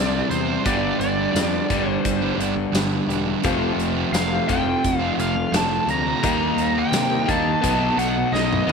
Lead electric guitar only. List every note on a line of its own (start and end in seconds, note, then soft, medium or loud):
0.00 0.27 D5 medium
0.31 0.63 C5 medium
0.67 0.99 D5 medium
1.00 1.91 D5 medium
1.91 2.36 C5 medium
4.13 4.48 F5 medium
4.49 4.98 G5 medium
4.98 5.15 F5 medium
5.20 5.55 F5 medium
5.56 5.90 A5 medium
5.91 6.79 A#5 loud
6.79 7.31 G5 medium
7.30 8.64 A5 medium
7.98 8.30 F#5 medium
8.33 8.72 D#5 medium